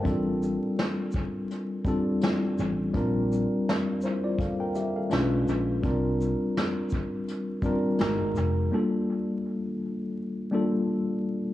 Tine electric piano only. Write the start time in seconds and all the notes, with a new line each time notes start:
Already playing: A#4 G5
0.03 G3 C4 D4 F4 A4
1.85 G3 C4 D4 F4 A4
2.94 G3 C4 D4 F4 A#4
4.04 E4 C5
4.24 F4 D5
4.40 A4 F5
4.60 A#4 G5
4.75 G4 E5
4.96 A4 F5
5.10 G#3 C#4 D4 F4 B4
5.83 G3 C4 D4 F4 A#4
7.62 G3 C4 D4 F4 A#4
7.99 G#3 B3 D#4 F#4 A#4
8.71 G3 A#3 D4 F4 A4
10.51 G3 A#3 D4 F4 A4